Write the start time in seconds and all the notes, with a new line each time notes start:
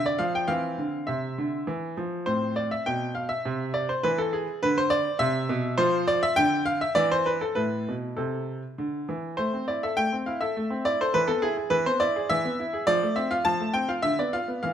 Already playing: D3
0.06 D5
0.19 F3 F5
0.35 G5
0.48 E3 C4 F5
0.78 D3
1.07 C3 E5
1.38 D3
1.67 E3
1.97 F3
2.26 A2 C4 C5
2.56 D5
2.71 E5
2.86 B2 G5
3.15 F5
3.29 E5
3.45 C3
3.74 D5
3.89 C5
4.03 E3 B4
4.18 A4
4.33 G#4
4.63 D3 B4
4.78 C5
4.90 D5
5.19 C3 E5
5.49 B2
5.78 F3 F4 C5
6.08 D5
6.23 E5
6.36 D3 G5
6.66 F5
6.81 E5
6.95 E3 D5
7.12 C5
7.26 B4
7.41 A4
7.55 A2 E4 B4
7.89 B2
8.17 C3 A4
8.78 D3
9.09 E3
9.37 A3 C5
9.53 C4
9.68 E4 D5
9.83 A4 E5
9.97 A3 G5
10.13 C4
10.26 E4 F5
10.41 A4 E5
10.57 A3
10.70 C4
10.85 E4 D5
11.01 A4 C5
11.14 E3 B4
11.28 B3 A4
11.42 E4 G#4
11.57 G#4
11.70 E3 B4
11.86 B3 C5
12.00 E4 D5
12.16 G#4
12.29 E3 E5
12.45 B3
12.60 E4
12.73 G#4
12.87 F3 D5
13.03 A3
13.16 C4 E5
13.31 F4 F5
13.45 F3 A5
13.60 A3
13.73 C4 G5
13.89 F4 F5
14.02 D3 E5
14.19 B3 D5
14.33 F4 F5
14.48 B3
14.63 E3 F5